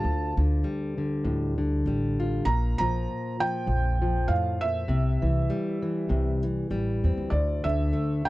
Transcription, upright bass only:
0.04 D2
0.37 D2
1.25 D2
1.86 A1
2.46 A#1
2.80 A#1
3.67 A#1
4.28 F2
4.89 C2
5.23 C2
6.10 C2
6.70 A1
7.04 E2
7.17 D2
7.31 D2
7.65 D2

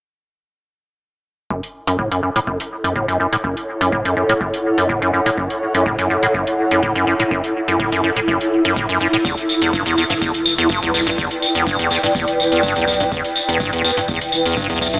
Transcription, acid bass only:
1.51 F#2
1.87 F#2
1.99 A2
2.12 F#2
2.23 F#2
2.36 A2
2.47 F#2
2.84 F#2
2.96 A2
3.08 F#2
3.20 F#2
3.33 A2
3.44 F#2
3.81 F#2
3.92 A2
4.05 F#2
4.17 F#2
4.29 A2
4.41 F#2
4.78 F#2
4.89 A2
5.02 F#2
5.13 F#2
5.26 A2
5.38 F#2
5.75 F#2
5.86 A2
5.99 F#2
6.10 F#2
6.23 A2
6.34 F#2
6.71 F#2
6.83 A2
6.95 F#2
7.07 F#2
7.20 A2
7.31 F#2
7.68 F#2
7.79 A2
7.92 F#2
8.04 F#2
8.16 A2
8.28 F#2
8.65 F#2
8.76 A2
8.89 F#2
9.01 F#2
9.13 A2
9.25 E2
9.62 E2
9.73 G2
9.86 E2
9.98 E2
10.10 G2
10.22 E2
10.58 E2
10.70 G2
10.83 E2
10.94 E2
11.07 G2
11.18 E2
11.55 E2
11.67 G2
11.79 E2
11.91 E2
12.03 G2
12.15 E2
12.52 E2
12.63 G2
12.76 E2
12.88 E2
13.00 G2
13.12 E2
13.49 E2
13.60 G2
13.73 E2
13.84 E2
13.97 G2
14.09 E2
14.46 E2
14.57 G2
14.70 E2
14.81 E2
14.94 G2

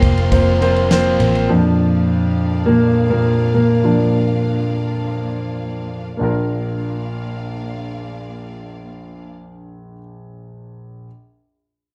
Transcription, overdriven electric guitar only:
0.02 A#3 F4 C5
0.31 F3 A#3 F4 C5
0.61 A#3 F4 C5
0.90 F3 A#3 F4 C5
1.20 A#3 F4 C5

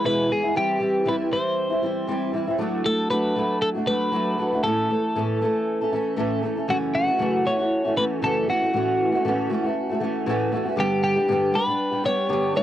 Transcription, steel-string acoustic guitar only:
0.04 E2 B2 E3 G#3 B3 E4
0.29 E3 G#3 B3 E4
0.43 E3 G#3 B3 E4
0.55 E3 G3 C4 E4
0.79 E3 G3 C4 E4
1.05 E3 G3 C4 E4
1.31 E3 G3 C4 E4
1.70 G3 C4 E4
1.81 E3 G3 C4 E4
2.07 E3 G3 C4 E4
2.33 E3 G3 C4 E4
2.47 G3 C4 E4
2.58 F#3 A3 D4 F#4
2.85 F#3 A3 D4 F#4
3.10 F#3 A3 D4 F#4
3.36 F#3 A3 D4 F#4
3.75 A3 D4 F#4
3.86 F#3 A3 D4 F#4
4.12 F#3 A3 D4 F#4
4.38 F#3 A3 D4 F#4
4.52 A3 D4 F#4
4.64 A2 E3 A3 C#4 A4
4.90 E3 A3 C#4 A4
5.15 A2 E3 A3 C#4 A4
5.41 E3 A3 C#4 A4
5.81 A3 C#4 A4
5.92 E3 A3 C#4 A4
6.16 A2 E3 A3 C#4 A4
6.42 E3 A3 C#4 A4
6.56 A3 C#4 A4
6.68 F#2 C#3 E3 A3 C#4 F#4
7.07 E3 A3 C#4 F#4
7.18 F#2 C#3 E3 A3 C#4 F#4
7.45 E3 A3 C#4 F#4
7.59 E3 A3 C#4 F#4
7.85 E3 A3 C#4 F#4
7.96 E3 A3 C#4 F#4
8.22 F#2 C#3 E3 A3 C#4 F#4
8.48 E3 A3 C#4 F#4
8.62 E3 A3 C#4 F#4
8.73 A2 E3 A3 C#4 F#4
9.12 A3 C#4 F#4
9.25 A2 E3 A3 C#4 F#4
9.49 E3 A3 C#4 F#4
9.63 A3 C#4 F#4
9.89 A3 C#4 F#4
10.00 E3 A3 C#4 F#4
10.26 A2 E3 A3 C#4 F#4
10.52 E3 A3 C#4 F#4
10.65 A3 C#4 F#4
10.76 G2 D3 G3 B3 D4 G4
11.16 G3 B3 D4 G4
11.28 G2 D3 G3 B3 D4 G4
11.52 G3 B3 D4 G4
11.67 G3 B3 D4 G4
11.91 G3 B3 D4 G4
12.04 G3 B3 D4 G4
12.29 G2 D3 G3 B3 D4 G4
12.55 G#3 B3 D4 E4

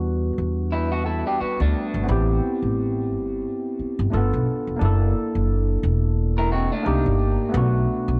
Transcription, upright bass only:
Already playing: E2
0.38 E2
1.40 muted upright bass stroke
1.60 D2
1.94 G1
2.09 A1
2.62 A1
3.11 G1
3.79 muted upright bass stroke
3.99 G1
4.13 G1
4.33 B1
4.67 E1
4.81 F#1
5.35 F#1
5.83 E1
6.86 C2
7.06 G1
7.54 B1
8.08 B1

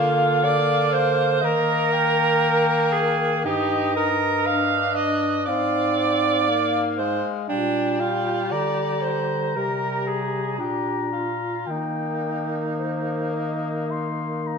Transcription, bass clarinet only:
Already playing: D3
1.43 D#3
3.46 G2
5.48 G#2
7.50 A#2
8.52 D3
9.56 C3
10.59 A#2
11.67 D#3

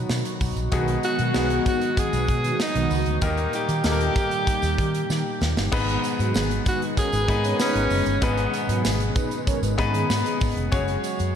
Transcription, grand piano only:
Already playing: B3 D#4 F#4 B4
0.72 B2 B3 D#4 F#4 G#4
1.34 B3 D#4 F#4 G#4
3.22 D#3 A#3 D#4 G4 A#4
3.84 A#3 D#4 G4 A4
3.92 A#4
5.72 G#2 B3 D#4 G#4 B4
7.28 B3 D#4 G#4 B4
8.22 G#2 B3 D#4 G#4 B4
9.78 B3 D#4 G#4 B4
10.72 C#4 F#4 G#4 C#5

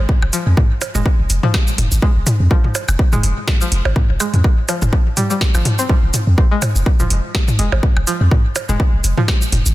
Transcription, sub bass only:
0.22 F1
0.47 F2
0.95 F1
1.19 F1
1.30 F1
1.78 F1
1.92 G#1
2.16 F1
2.40 F2
2.88 F1
3.13 F1
3.23 F1
3.72 F1
3.85 G#1
4.09 F1
4.34 F2
4.82 F1
5.55 G#1
6.03 F1
6.27 F2
6.76 F1
7.00 F1
7.10 F1
7.59 F1
7.72 G#1
7.97 F1
8.21 F2
8.69 F1
8.93 F1
9.04 F1
9.52 F1
9.66 G#1

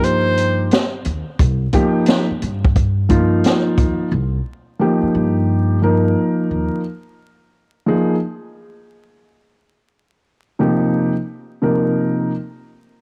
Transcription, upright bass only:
Already playing: G2
1.06 D#2
1.40 C2
2.31 muted upright bass stroke
2.42 G2
3.78 D#2
4.12 C2
5.02 muted upright bass stroke
5.15 G2
6.51 D#2

